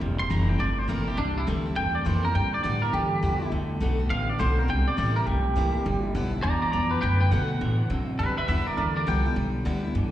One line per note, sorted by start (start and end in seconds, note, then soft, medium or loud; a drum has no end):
0.01 0.30 E1 medium
0.01 0.58 C3 medium
0.01 0.29 C3 medium
0.01 0.29 G3 medium
0.19 0.31 C6 loud
0.30 0.59 F1 loud
0.30 0.58 C3 medium
0.30 0.58 E3 medium
0.30 0.58 G3 medium
0.30 0.59 A3 loud
0.30 0.59 C4 medium
0.30 0.59 E4 loud
0.30 0.49 A#5 medium
0.49 0.59 G5 loud
0.59 0.88 G1 medium
0.59 1.16 G2 medium
0.59 0.87 C3 medium
0.59 0.87 A3 medium
0.59 0.79 D5 medium
0.79 0.89 C5 loud
0.88 1.17 B1 medium
0.88 1.16 C3 medium
0.88 1.06 E3 medium
0.88 1.07 A3 loud
0.88 1.17 A#3 medium
0.88 1.07 C4 loud
0.88 1.06 E4 loud
0.88 1.08 A#4 medium
1.07 1.18 C4 medium
1.07 1.17 E4 medium
1.07 1.18 G4 loud
1.17 1.46 C2 medium
1.17 1.74 C3 medium
1.17 1.45 C3 medium
1.17 1.46 G3 medium
1.17 1.38 D4 loud
1.38 1.47 E4 loud
1.47 1.76 D2 medium
1.47 1.75 C3 medium
1.47 1.65 E3 medium
1.47 1.75 G3 loud
1.47 1.65 A3 medium
1.47 1.66 C4 loud
1.47 1.64 E4 medium
1.65 1.77 C4 soft
1.65 1.76 E4 medium
1.76 2.05 E2 medium
1.76 2.33 G2 loud
1.76 2.04 C3 medium
1.76 2.04 A3 loud
1.76 1.95 G5 loud
1.95 2.05 D5 loud
2.05 2.34 F2 loud
2.05 2.33 C3 medium
2.05 2.23 E3 medium
2.05 2.24 A3 medium
2.05 2.33 A#3 medium
2.05 2.24 C4 loud
2.05 2.23 E4 loud
2.05 2.24 C5 loud
2.24 2.35 C4 medium
2.24 2.34 E4 medium
2.24 2.35 A#4 medium
2.35 2.62 G2 medium
2.35 2.64 G2 medium
2.35 2.62 D3 medium
2.35 2.62 G3 medium
2.35 2.53 G5 loud
2.54 2.62 D5 loud
2.63 2.92 G2 medium
2.63 2.93 A2 medium
2.63 2.92 D3 loud
2.63 2.82 G3 medium
2.63 2.83 B3 loud
2.63 2.82 E4 medium
2.63 2.82 D5 medium
2.82 2.94 B3 soft
2.82 2.93 E4 medium
2.82 2.93 A#4 loud
2.93 3.21 G2 medium
2.93 3.22 G2 medium
2.93 3.50 D3 medium
2.93 3.21 E3 loud
2.93 3.50 G4 loud
3.22 3.51 E2 loud
3.22 3.50 G2 medium
3.22 3.50 F3 medium
3.22 3.41 G3 medium
3.22 3.41 B3 loud
3.22 3.40 E4 loud
3.41 3.52 B3 soft
3.41 3.52 E4 medium
3.51 3.80 D2 medium
3.51 3.79 D3 medium
3.51 3.79 A3 medium
3.80 4.09 B1 medium
3.80 3.99 D3 medium
3.80 4.08 D3 medium
3.80 3.99 A3 loud
3.80 4.09 A3 loud
3.80 4.00 B3 medium
3.80 3.98 F#4 loud
3.99 4.11 B3 soft
3.99 4.10 F#4 medium
4.10 4.39 A1 medium
4.10 4.67 A2 medium
4.10 4.38 D3 medium
4.10 4.38 B3 medium
4.10 4.29 F5 loud
4.29 4.39 D5 loud
4.39 4.68 B1 loud
4.39 4.57 D3 loud
4.39 4.67 D3 medium
4.39 4.58 A3 loud
4.39 4.58 B3 loud
4.39 4.67 C4 medium
4.39 4.57 F#4 loud
4.39 4.59 C5 medium
4.58 4.69 B3 medium
4.58 4.68 F#4 medium
4.58 4.69 A#4 medium
4.68 4.87 C2 medium
4.68 5.25 C3 medium
4.68 4.96 C3 medium
4.68 4.96 G3 medium
4.68 4.88 G5 loud
4.88 4.97 D5 loud
4.88 muted upright bass stroke soft
4.97 5.26 A1 loud
4.97 5.25 C3 medium
4.97 5.16 E3 medium
4.97 5.26 G3 loud
4.97 5.16 A3 loud
4.97 5.16 C4 loud
4.97 5.15 E4 loud
4.97 5.16 D5 loud
5.16 5.28 C4 soft
5.16 5.27 E4 medium
5.16 5.26 A#4 loud
5.26 5.56 B1 medium
5.26 5.83 G2 medium
5.26 5.54 C3 medium
5.26 5.55 A3 loud
5.26 6.12 G4 loud
5.56 5.74 C2 medium
5.56 5.84 C3 medium
5.56 5.74 E3 loud
5.56 5.75 A3 loud
5.56 5.84 A#3 loud
5.56 5.75 C4 loud
5.56 5.74 E4 loud
5.75 5.86 C4 soft
5.75 5.85 E4 medium
5.75 muted upright bass stroke soft
5.86 6.14 G1 medium
5.86 6.13 G2 medium
5.86 6.13 D3 medium
5.86 6.13 G3 medium
6.14 6.43 B1 loud
6.14 6.42 G2 medium
6.14 6.42 D3 loud
6.14 6.33 G3 medium
6.14 6.33 B3 loud
6.14 6.32 E4 loud
6.33 6.44 B3 soft
6.33 6.43 E4 medium
6.43 6.62 E2 medium
6.43 6.71 G2 loud
6.43 6.72 B2 medium
6.43 6.71 E3 loud
6.43 6.61 D5 medium
6.43 6.61 A#5 loud
6.62 6.71 D5 medium
6.62 6.71 A#5 medium
6.62 muted upright bass stroke soft
6.72 7.02 F2 medium
6.72 7.01 G2 medium
6.72 7.02 E3 medium
6.72 7.01 F3 loud
6.72 6.90 D5 medium
6.72 6.91 A#5 medium
6.91 7.00 B4 medium
6.91 7.01 G5 loud
7.01 7.31 F#2 medium
7.01 7.30 D3 medium
7.01 7.30 A3 medium
7.01 7.19 B4 medium
7.01 7.20 G5 loud
7.20 7.30 B4 medium
7.20 7.31 G5 loud
7.31 7.60 B2 loud
7.31 7.50 D3 medium
7.31 7.59 D3 loud
7.31 7.50 A3 medium
7.31 7.59 A3 loud
7.31 7.50 B3 loud
7.31 7.49 F#4 loud
7.31 8.20 F#5 loud
7.50 7.61 B3 soft
7.50 7.60 F#4 medium
7.61 7.89 A2 medium
7.61 7.88 D3 medium
7.61 7.89 E3 medium
7.61 7.89 B3 loud
7.90 8.19 B2 medium
7.90 8.18 D3 medium
7.90 8.18 F#3 medium
7.90 8.18 C4 loud
8.19 8.37 G2 medium
8.19 8.47 G2 medium
8.19 8.47 D3 medium
8.19 8.47 G3 medium
8.19 8.36 B4 medium
8.19 8.37 E5 loud
8.37 8.47 B4 medium
8.37 8.47 E5 medium
8.37 muted upright bass stroke soft
8.48 8.66 E2 medium
8.48 8.76 G2 medium
8.48 8.76 D3 loud
8.48 8.67 G3 medium
8.48 8.67 B3 medium
8.48 8.66 E4 loud
8.48 8.66 B4 medium
8.48 8.67 E5 medium
8.66 8.78 B3 soft
8.66 8.77 E4 medium
8.66 8.76 A#4 medium
8.66 8.76 D5 medium
8.66 muted upright bass stroke soft
8.77 9.06 D2 medium
8.77 9.05 G2 medium
8.77 9.34 D3 medium
8.77 9.05 E3 medium
8.77 8.95 A#4 medium
8.77 8.96 D5 medium
8.96 9.06 A#4 medium
8.96 9.07 D5 medium
9.07 9.35 C2 medium
9.07 9.34 G2 medium
9.07 9.35 F3 loud
9.07 9.25 G3 medium
9.07 9.26 B3 medium
9.07 9.24 E4 loud
9.07 9.26 G5 medium
9.26 9.37 B3 medium
9.26 9.36 E4 medium
9.36 9.65 B1 medium
9.36 9.64 G2 medium
9.36 9.64 D3 medium
9.36 9.64 G3 medium
9.65 9.94 D2 loud
9.65 9.93 G2 medium
9.65 9.93 D3 loud
9.65 9.84 G3 medium
9.65 9.84 B3 medium
9.65 9.83 E4 medium
9.85 9.96 B3 soft
9.85 9.95 E4 medium
9.95 10.11 G2 medium
9.95 10.11 D3 medium
9.95 10.11 E3 loud